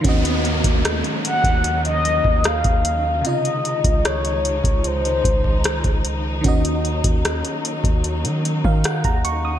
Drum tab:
HH |xxxxxxxxxxx-xxx-|xxxxxxxxxxx-xxx-|xxxxxxxxxxx-xxx-|
SD |----r-------r---|----r-------r---|----r-------r---|
BD |o--o---o---o-o--|---o---o--oo-o--|o--o---o---o-o--|